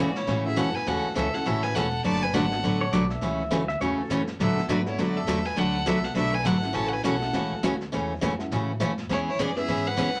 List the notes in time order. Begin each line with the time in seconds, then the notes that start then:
0.00 C#3 F#4 D5
0.15 E4 C#5, snare
0.27 A2 C#3 E3 A3 C#4 F#4, brush sweep, snare
0.44 A3 C#4 E4 F#4 G#4 A4 E5
0.56 F#2 C#3 E3 A3 C#4 F#4 A4 F#5, snare, hi-hat pedal
0.75 B4 G#5, muted upright bass stroke, snare
0.86 E2 C#3 E3 A3 C#4 F#4 A4 F#5, brush sweep, snare
1.15 C#2 C#3 E3 A3 C#4 F#4 A4 E5, snare, hi-hat pedal
1.33 A3 C#4 E4 F#4 A4 F#5, muted upright bass stroke, snare
1.45 A1 C#3 E3 A3 C#4 F#4 A4 E5, brush sweep, snare
1.63 B4 G#5, snare
1.75 E1 C#3 E3 A3 C#4 F#4 A4 F#5, snare, hi-hat pedal
2.04 F#1 D3 F#3 A3 D4 F#4 B4 D5 A5, brush sweep, snare
2.23 B4 G#5
2.33 G#1 D3 F#3 A3 D4 F#4 A4 B4 F#5, snare, hi-hat pedal
2.50 A3 B3 D4 F#4 A4, snare
2.62 A1 D3 F#3 A3 D4 F#4 B4, brush sweep, snare
2.81 C#5
2.93 B1 D3 F#3 A3 D4 F#4 B4 D5, snare, hi-hat pedal
3.10 E5, snare
3.21 C#2 C#3 E3 A3 C#4 F#4, brush sweep, snare
3.51 D2 C#3 E3 A3 C#4 F#4, snare, hi-hat pedal
3.68 E5, snare
3.80 E2 C#3 E3 A3 C#4 F#4 C#5, brush sweep, snare
3.98 A4
4.09 F#2 C#3 E3 A3 C#4 F#4, snare, hi-hat pedal
4.27 snare
4.39 A2 D3 F#3 A3 D4 F#4 A4 B4 E5, brush sweep, snare
4.56 A3 B3 D4 F#4 A4, muted upright bass stroke, snare
4.67 G#2 D3 F#3 A3 D4 F#4 B4 D5, snare, hi-hat pedal
4.85 A3 B3 D4 E4 F#4 A4 C#5, snare
4.97 F#2 D3 F#3 A3 D4 F#4 B4 D5, brush sweep, snare
5.17 A4 E5
5.26 E2 D3 F#3 A3 D4 F#4 B4, snare, hi-hat pedal
5.45 B4 G#5, snare
5.56 D2 D3 F#3 A3 D4 F#4 A4 B4 F#5, brush sweep, snare
5.85 C2 D3 F#3 A3 B3 D4 F#4 A4 B4 E5, snare, hi-hat pedal
6.03 A4 F#5, snare
6.15 B1 D3 F#3 A3 D4 F#4 A4 B4 E5, brush sweep, snare
6.33 B4 G#5
6.44 G#1 D3 F#3 A3 D4 F#4 A4 B4 F#5, snare, hi-hat pedal
6.61 A3 C#4 E4 F#4 A4, snare
6.73 A1 C#3 E3 A3 C#4 F#4 C#5 A5, brush sweep, snare
6.86 A4 F#5
6.93 B4 G#5
7.04 B1 C#3 E3 A3 C#4 F#4 A4 F#5, snare, hi-hat pedal
7.20 A3 C#4 E4 F#4 A4, snare
7.33 C#2 C#3 E3 A3 C#4 F#4, brush sweep, snare
7.51 muted upright bass stroke
7.63 D2 C#3 E3 A3 C#4 F#4, snare, hi-hat pedal
7.81 snare
7.92 E2 C#3 E3 A3 C#4 F#4, brush sweep, snare
8.21 F#2 C#3 E3 A3 C#4 F#4, snare, hi-hat pedal
8.38 A3 C#4 E4 F#4 A4, snare
8.51 A2 C#3 E3 A3 C#4 F#4, brush sweep, snare
8.80 F#2 C#3 E3 A3 C#4 F#4, snare, hi-hat pedal
8.98 snare
9.09 E2 E3 B3 C#4 E4 G#4 C#5, brush sweep, snare
9.29 E4 C#5
9.38 F#2 E3 B3 C#4 G#4 D5, snare, hi-hat pedal
9.55 B3 C#4 E4 G#4 B4 E5, snare
9.68 G#2 E3 B3 C#4 G#4, brush sweep, snare
9.87 B4 F#5
9.97 C#2 E3 B3 C#4 G#4, snare, hi-hat pedal
10.15 snare